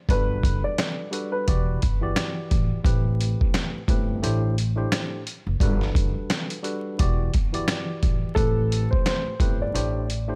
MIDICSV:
0, 0, Header, 1, 5, 480
1, 0, Start_track
1, 0, Tempo, 689655
1, 63, Time_signature, 4, 2, 24, 8
1, 7206, End_track
2, 0, Start_track
2, 0, Title_t, "Upright piano"
2, 0, Program_c, 0, 0
2, 72, Note_on_c, 0, 71, 101
2, 425, Note_off_c, 0, 71, 0
2, 446, Note_on_c, 0, 74, 80
2, 534, Note_off_c, 0, 74, 0
2, 555, Note_on_c, 0, 74, 67
2, 907, Note_off_c, 0, 74, 0
2, 919, Note_on_c, 0, 71, 80
2, 1473, Note_off_c, 0, 71, 0
2, 5810, Note_on_c, 0, 69, 122
2, 6174, Note_off_c, 0, 69, 0
2, 6198, Note_on_c, 0, 72, 76
2, 6290, Note_off_c, 0, 72, 0
2, 6309, Note_on_c, 0, 72, 85
2, 6663, Note_off_c, 0, 72, 0
2, 6694, Note_on_c, 0, 74, 66
2, 7206, Note_off_c, 0, 74, 0
2, 7206, End_track
3, 0, Start_track
3, 0, Title_t, "Tine electric piano"
3, 0, Program_c, 1, 4
3, 65, Note_on_c, 1, 55, 93
3, 69, Note_on_c, 1, 62, 91
3, 72, Note_on_c, 1, 66, 86
3, 74, Note_on_c, 1, 69, 80
3, 79, Note_on_c, 1, 71, 104
3, 736, Note_off_c, 1, 55, 0
3, 738, Note_off_c, 1, 62, 0
3, 739, Note_off_c, 1, 66, 0
3, 741, Note_off_c, 1, 69, 0
3, 743, Note_off_c, 1, 71, 0
3, 773, Note_on_c, 1, 55, 92
3, 779, Note_on_c, 1, 62, 83
3, 781, Note_on_c, 1, 66, 85
3, 784, Note_on_c, 1, 69, 83
3, 788, Note_on_c, 1, 71, 99
3, 1018, Note_off_c, 1, 55, 0
3, 1020, Note_off_c, 1, 62, 0
3, 1021, Note_off_c, 1, 66, 0
3, 1023, Note_off_c, 1, 69, 0
3, 1023, Note_on_c, 1, 52, 94
3, 1025, Note_off_c, 1, 71, 0
3, 1026, Note_on_c, 1, 64, 88
3, 1029, Note_on_c, 1, 66, 90
3, 1033, Note_on_c, 1, 67, 86
3, 1036, Note_on_c, 1, 74, 105
3, 1247, Note_off_c, 1, 52, 0
3, 1248, Note_off_c, 1, 64, 0
3, 1250, Note_off_c, 1, 66, 0
3, 1252, Note_off_c, 1, 67, 0
3, 1253, Note_off_c, 1, 74, 0
3, 1400, Note_on_c, 1, 52, 99
3, 1403, Note_on_c, 1, 64, 89
3, 1407, Note_on_c, 1, 66, 86
3, 1410, Note_on_c, 1, 67, 87
3, 1413, Note_on_c, 1, 74, 111
3, 1941, Note_off_c, 1, 52, 0
3, 1942, Note_off_c, 1, 64, 0
3, 1945, Note_off_c, 1, 66, 0
3, 1946, Note_off_c, 1, 67, 0
3, 1947, Note_off_c, 1, 74, 0
3, 1973, Note_on_c, 1, 45, 96
3, 1976, Note_on_c, 1, 57, 83
3, 1981, Note_on_c, 1, 60, 86
3, 1984, Note_on_c, 1, 67, 88
3, 1988, Note_on_c, 1, 71, 104
3, 2650, Note_off_c, 1, 45, 0
3, 2651, Note_off_c, 1, 57, 0
3, 2654, Note_off_c, 1, 60, 0
3, 2655, Note_off_c, 1, 67, 0
3, 2657, Note_off_c, 1, 71, 0
3, 2701, Note_on_c, 1, 45, 96
3, 2704, Note_on_c, 1, 57, 86
3, 2708, Note_on_c, 1, 60, 90
3, 2711, Note_on_c, 1, 67, 75
3, 2715, Note_on_c, 1, 71, 96
3, 2927, Note_off_c, 1, 45, 0
3, 2931, Note_off_c, 1, 57, 0
3, 2936, Note_on_c, 1, 45, 95
3, 2939, Note_on_c, 1, 57, 82
3, 2940, Note_off_c, 1, 67, 0
3, 2942, Note_on_c, 1, 62, 89
3, 2945, Note_off_c, 1, 60, 0
3, 2945, Note_on_c, 1, 64, 95
3, 2948, Note_off_c, 1, 71, 0
3, 2948, Note_on_c, 1, 67, 91
3, 2951, Note_on_c, 1, 72, 107
3, 3163, Note_off_c, 1, 45, 0
3, 3165, Note_off_c, 1, 57, 0
3, 3166, Note_off_c, 1, 62, 0
3, 3168, Note_off_c, 1, 64, 0
3, 3169, Note_off_c, 1, 67, 0
3, 3171, Note_off_c, 1, 72, 0
3, 3311, Note_on_c, 1, 45, 102
3, 3313, Note_on_c, 1, 57, 87
3, 3316, Note_on_c, 1, 62, 86
3, 3320, Note_on_c, 1, 64, 81
3, 3321, Note_on_c, 1, 67, 96
3, 3324, Note_on_c, 1, 72, 102
3, 3632, Note_off_c, 1, 45, 0
3, 3633, Note_off_c, 1, 57, 0
3, 3635, Note_off_c, 1, 62, 0
3, 3637, Note_off_c, 1, 64, 0
3, 3638, Note_off_c, 1, 67, 0
3, 3639, Note_off_c, 1, 72, 0
3, 3902, Note_on_c, 1, 55, 92
3, 3905, Note_on_c, 1, 62, 92
3, 3910, Note_on_c, 1, 66, 86
3, 3912, Note_on_c, 1, 69, 81
3, 3916, Note_on_c, 1, 71, 108
3, 4574, Note_off_c, 1, 55, 0
3, 4576, Note_off_c, 1, 62, 0
3, 4578, Note_off_c, 1, 66, 0
3, 4579, Note_off_c, 1, 69, 0
3, 4581, Note_off_c, 1, 71, 0
3, 4611, Note_on_c, 1, 55, 90
3, 4615, Note_on_c, 1, 62, 81
3, 4617, Note_on_c, 1, 66, 89
3, 4620, Note_on_c, 1, 69, 80
3, 4624, Note_on_c, 1, 71, 98
3, 4857, Note_off_c, 1, 55, 0
3, 4857, Note_off_c, 1, 66, 0
3, 4858, Note_on_c, 1, 52, 94
3, 4859, Note_off_c, 1, 62, 0
3, 4861, Note_off_c, 1, 69, 0
3, 4862, Note_on_c, 1, 64, 84
3, 4863, Note_off_c, 1, 71, 0
3, 4865, Note_on_c, 1, 66, 88
3, 4868, Note_on_c, 1, 67, 89
3, 4872, Note_on_c, 1, 74, 104
3, 5084, Note_off_c, 1, 52, 0
3, 5086, Note_off_c, 1, 64, 0
3, 5088, Note_off_c, 1, 66, 0
3, 5089, Note_off_c, 1, 67, 0
3, 5091, Note_off_c, 1, 74, 0
3, 5239, Note_on_c, 1, 52, 98
3, 5243, Note_on_c, 1, 64, 88
3, 5246, Note_on_c, 1, 66, 85
3, 5249, Note_on_c, 1, 67, 85
3, 5252, Note_on_c, 1, 74, 110
3, 5781, Note_off_c, 1, 52, 0
3, 5782, Note_off_c, 1, 64, 0
3, 5784, Note_off_c, 1, 66, 0
3, 5786, Note_off_c, 1, 67, 0
3, 5787, Note_off_c, 1, 74, 0
3, 5814, Note_on_c, 1, 45, 96
3, 5818, Note_on_c, 1, 57, 84
3, 5820, Note_on_c, 1, 60, 86
3, 5824, Note_on_c, 1, 67, 88
3, 5827, Note_on_c, 1, 71, 106
3, 6490, Note_off_c, 1, 45, 0
3, 6492, Note_off_c, 1, 57, 0
3, 6493, Note_off_c, 1, 60, 0
3, 6495, Note_off_c, 1, 67, 0
3, 6497, Note_off_c, 1, 71, 0
3, 6540, Note_on_c, 1, 45, 95
3, 6544, Note_on_c, 1, 57, 87
3, 6546, Note_on_c, 1, 60, 88
3, 6551, Note_on_c, 1, 67, 75
3, 6554, Note_on_c, 1, 71, 99
3, 6768, Note_off_c, 1, 45, 0
3, 6771, Note_off_c, 1, 57, 0
3, 6776, Note_on_c, 1, 45, 97
3, 6779, Note_on_c, 1, 57, 80
3, 6780, Note_off_c, 1, 67, 0
3, 6782, Note_on_c, 1, 62, 92
3, 6784, Note_off_c, 1, 60, 0
3, 6784, Note_on_c, 1, 64, 91
3, 6788, Note_off_c, 1, 71, 0
3, 6788, Note_on_c, 1, 67, 89
3, 6790, Note_on_c, 1, 72, 102
3, 7003, Note_off_c, 1, 45, 0
3, 7005, Note_off_c, 1, 57, 0
3, 7006, Note_off_c, 1, 62, 0
3, 7007, Note_off_c, 1, 64, 0
3, 7009, Note_off_c, 1, 67, 0
3, 7010, Note_off_c, 1, 72, 0
3, 7151, Note_on_c, 1, 45, 98
3, 7154, Note_on_c, 1, 57, 89
3, 7157, Note_on_c, 1, 62, 83
3, 7160, Note_on_c, 1, 64, 82
3, 7161, Note_on_c, 1, 67, 91
3, 7164, Note_on_c, 1, 72, 99
3, 7206, Note_off_c, 1, 45, 0
3, 7206, Note_off_c, 1, 57, 0
3, 7206, Note_off_c, 1, 62, 0
3, 7206, Note_off_c, 1, 64, 0
3, 7206, Note_off_c, 1, 67, 0
3, 7206, Note_off_c, 1, 72, 0
3, 7206, End_track
4, 0, Start_track
4, 0, Title_t, "Upright bass"
4, 0, Program_c, 2, 32
4, 61, Note_on_c, 2, 31, 113
4, 273, Note_off_c, 2, 31, 0
4, 303, Note_on_c, 2, 30, 89
4, 426, Note_off_c, 2, 30, 0
4, 1030, Note_on_c, 2, 28, 107
4, 1238, Note_off_c, 2, 28, 0
4, 1274, Note_on_c, 2, 31, 90
4, 1480, Note_off_c, 2, 31, 0
4, 1749, Note_on_c, 2, 33, 90
4, 1870, Note_off_c, 2, 33, 0
4, 1981, Note_on_c, 2, 33, 114
4, 2316, Note_off_c, 2, 33, 0
4, 2702, Note_on_c, 2, 31, 97
4, 2913, Note_off_c, 2, 31, 0
4, 2943, Note_on_c, 2, 33, 99
4, 3365, Note_off_c, 2, 33, 0
4, 3804, Note_on_c, 2, 30, 92
4, 3891, Note_off_c, 2, 30, 0
4, 3900, Note_on_c, 2, 31, 112
4, 4112, Note_off_c, 2, 31, 0
4, 4143, Note_on_c, 2, 30, 91
4, 4266, Note_off_c, 2, 30, 0
4, 4869, Note_on_c, 2, 28, 111
4, 5077, Note_off_c, 2, 28, 0
4, 5113, Note_on_c, 2, 31, 90
4, 5319, Note_off_c, 2, 31, 0
4, 5588, Note_on_c, 2, 33, 88
4, 5709, Note_off_c, 2, 33, 0
4, 5821, Note_on_c, 2, 33, 112
4, 6156, Note_off_c, 2, 33, 0
4, 6542, Note_on_c, 2, 31, 93
4, 6753, Note_off_c, 2, 31, 0
4, 6783, Note_on_c, 2, 33, 98
4, 7205, Note_off_c, 2, 33, 0
4, 7206, End_track
5, 0, Start_track
5, 0, Title_t, "Drums"
5, 60, Note_on_c, 9, 36, 116
5, 68, Note_on_c, 9, 42, 90
5, 130, Note_off_c, 9, 36, 0
5, 138, Note_off_c, 9, 42, 0
5, 302, Note_on_c, 9, 36, 104
5, 312, Note_on_c, 9, 42, 75
5, 372, Note_off_c, 9, 36, 0
5, 381, Note_off_c, 9, 42, 0
5, 545, Note_on_c, 9, 42, 98
5, 546, Note_on_c, 9, 38, 110
5, 553, Note_on_c, 9, 40, 89
5, 614, Note_off_c, 9, 42, 0
5, 615, Note_off_c, 9, 38, 0
5, 622, Note_off_c, 9, 40, 0
5, 785, Note_on_c, 9, 42, 72
5, 855, Note_off_c, 9, 42, 0
5, 1028, Note_on_c, 9, 42, 103
5, 1030, Note_on_c, 9, 36, 97
5, 1098, Note_off_c, 9, 42, 0
5, 1099, Note_off_c, 9, 36, 0
5, 1268, Note_on_c, 9, 42, 67
5, 1273, Note_on_c, 9, 36, 86
5, 1338, Note_off_c, 9, 42, 0
5, 1343, Note_off_c, 9, 36, 0
5, 1504, Note_on_c, 9, 38, 123
5, 1506, Note_on_c, 9, 42, 107
5, 1511, Note_on_c, 9, 40, 104
5, 1574, Note_off_c, 9, 38, 0
5, 1575, Note_off_c, 9, 42, 0
5, 1581, Note_off_c, 9, 40, 0
5, 1748, Note_on_c, 9, 42, 65
5, 1749, Note_on_c, 9, 36, 92
5, 1817, Note_off_c, 9, 42, 0
5, 1819, Note_off_c, 9, 36, 0
5, 1980, Note_on_c, 9, 36, 112
5, 1988, Note_on_c, 9, 42, 90
5, 2050, Note_off_c, 9, 36, 0
5, 2058, Note_off_c, 9, 42, 0
5, 2232, Note_on_c, 9, 42, 78
5, 2301, Note_off_c, 9, 42, 0
5, 2374, Note_on_c, 9, 36, 96
5, 2444, Note_off_c, 9, 36, 0
5, 2464, Note_on_c, 9, 42, 95
5, 2465, Note_on_c, 9, 38, 113
5, 2472, Note_on_c, 9, 40, 90
5, 2533, Note_off_c, 9, 42, 0
5, 2534, Note_off_c, 9, 38, 0
5, 2541, Note_off_c, 9, 40, 0
5, 2701, Note_on_c, 9, 36, 92
5, 2705, Note_on_c, 9, 42, 69
5, 2771, Note_off_c, 9, 36, 0
5, 2775, Note_off_c, 9, 42, 0
5, 2948, Note_on_c, 9, 42, 101
5, 3018, Note_off_c, 9, 42, 0
5, 3188, Note_on_c, 9, 42, 67
5, 3258, Note_off_c, 9, 42, 0
5, 3424, Note_on_c, 9, 38, 127
5, 3426, Note_on_c, 9, 42, 107
5, 3431, Note_on_c, 9, 40, 100
5, 3494, Note_off_c, 9, 38, 0
5, 3495, Note_off_c, 9, 42, 0
5, 3501, Note_off_c, 9, 40, 0
5, 3667, Note_on_c, 9, 42, 63
5, 3736, Note_off_c, 9, 42, 0
5, 3899, Note_on_c, 9, 36, 114
5, 3906, Note_on_c, 9, 42, 89
5, 3969, Note_off_c, 9, 36, 0
5, 3976, Note_off_c, 9, 42, 0
5, 4045, Note_on_c, 9, 38, 40
5, 4115, Note_off_c, 9, 38, 0
5, 4141, Note_on_c, 9, 36, 101
5, 4150, Note_on_c, 9, 42, 77
5, 4211, Note_off_c, 9, 36, 0
5, 4219, Note_off_c, 9, 42, 0
5, 4383, Note_on_c, 9, 42, 100
5, 4385, Note_on_c, 9, 38, 111
5, 4391, Note_on_c, 9, 40, 89
5, 4453, Note_off_c, 9, 42, 0
5, 4454, Note_off_c, 9, 38, 0
5, 4461, Note_off_c, 9, 40, 0
5, 4526, Note_on_c, 9, 42, 56
5, 4595, Note_off_c, 9, 42, 0
5, 4624, Note_on_c, 9, 42, 69
5, 4693, Note_off_c, 9, 42, 0
5, 4867, Note_on_c, 9, 42, 105
5, 4869, Note_on_c, 9, 36, 98
5, 4936, Note_off_c, 9, 42, 0
5, 4938, Note_off_c, 9, 36, 0
5, 5106, Note_on_c, 9, 42, 68
5, 5112, Note_on_c, 9, 36, 82
5, 5175, Note_off_c, 9, 42, 0
5, 5182, Note_off_c, 9, 36, 0
5, 5247, Note_on_c, 9, 42, 55
5, 5317, Note_off_c, 9, 42, 0
5, 5343, Note_on_c, 9, 38, 121
5, 5345, Note_on_c, 9, 42, 107
5, 5350, Note_on_c, 9, 40, 106
5, 5413, Note_off_c, 9, 38, 0
5, 5415, Note_off_c, 9, 42, 0
5, 5420, Note_off_c, 9, 40, 0
5, 5586, Note_on_c, 9, 42, 67
5, 5588, Note_on_c, 9, 36, 94
5, 5656, Note_off_c, 9, 42, 0
5, 5657, Note_off_c, 9, 36, 0
5, 5819, Note_on_c, 9, 36, 112
5, 5827, Note_on_c, 9, 42, 92
5, 5889, Note_off_c, 9, 36, 0
5, 5896, Note_off_c, 9, 42, 0
5, 6070, Note_on_c, 9, 42, 78
5, 6140, Note_off_c, 9, 42, 0
5, 6214, Note_on_c, 9, 36, 97
5, 6283, Note_off_c, 9, 36, 0
5, 6304, Note_on_c, 9, 42, 96
5, 6305, Note_on_c, 9, 38, 112
5, 6312, Note_on_c, 9, 40, 91
5, 6374, Note_off_c, 9, 42, 0
5, 6375, Note_off_c, 9, 38, 0
5, 6382, Note_off_c, 9, 40, 0
5, 6541, Note_on_c, 9, 36, 94
5, 6545, Note_on_c, 9, 42, 72
5, 6611, Note_off_c, 9, 36, 0
5, 6614, Note_off_c, 9, 42, 0
5, 6789, Note_on_c, 9, 42, 102
5, 6859, Note_off_c, 9, 42, 0
5, 7028, Note_on_c, 9, 42, 68
5, 7098, Note_off_c, 9, 42, 0
5, 7206, End_track
0, 0, End_of_file